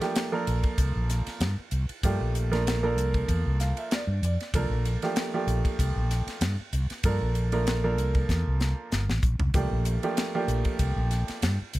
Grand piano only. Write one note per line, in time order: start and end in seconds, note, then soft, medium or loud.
0.01 0.31 F3 medium
0.01 0.31 A3 medium
0.01 0.31 A#3 medium
0.01 0.31 D4 medium
0.01 0.31 G4 medium
0.32 1.49 F3 medium
0.32 1.49 A#3 medium
0.32 1.50 D4 medium
0.32 1.49 A4 medium
0.32 1.49 A#4 medium
2.04 2.49 F3 medium
2.04 2.49 A3 medium
2.04 2.49 A#3 medium
2.04 2.49 D4 medium
2.04 2.49 G4 medium
2.51 2.81 F3 medium
2.51 2.81 A3 medium
2.51 2.81 A#3 medium
2.51 2.82 D4 medium
2.51 2.81 A#4 medium
2.83 4.00 F3 medium
2.83 4.00 A#3 medium
2.83 4.00 D4 medium
2.83 4.00 A4 medium
2.83 4.00 A#4 medium
3.60 3.76 F5 medium
3.78 3.91 E5 medium
3.93 4.21 D5 medium
4.25 4.53 D5 medium
4.55 5.00 F3 medium
4.55 5.00 A#3 medium
4.55 5.00 D4 medium
4.55 5.00 A4 medium
4.55 5.00 A#4 medium
5.03 5.32 F3 medium
5.03 5.32 A3 medium
5.03 5.32 A#3 medium
5.03 5.32 D4 medium
5.03 5.32 G4 medium
5.34 6.50 F3 medium
5.34 6.51 A3 medium
5.34 6.51 A#3 medium
5.34 6.51 D4 medium
5.34 6.51 G4 medium
7.05 7.50 F3 medium
7.05 7.50 A#3 medium
7.05 7.50 D4 medium
7.05 7.50 A4 medium
7.05 7.50 A#4 medium
7.52 7.82 F3 medium
7.52 7.82 A3 medium
7.52 7.82 A#3 medium
7.52 7.82 D4 medium
7.52 7.82 A#4 medium
7.84 9.01 F3 medium
7.84 9.01 A#3 medium
7.84 9.01 D4 medium
7.84 9.01 A4 medium
7.84 9.01 A#4 medium
9.54 10.00 F3 medium
9.54 10.00 A3 medium
9.54 10.00 A#3 medium
9.54 10.00 D4 medium
9.54 10.00 G4 medium
10.03 10.33 F3 medium
10.03 10.33 A3 medium
10.03 10.33 A#3 medium
10.03 10.33 D4 medium
10.03 10.33 G4 medium
10.34 11.52 F3 medium
10.34 11.51 A3 medium
10.34 11.52 A#3 medium
10.34 11.52 D4 medium
10.34 11.52 G4 medium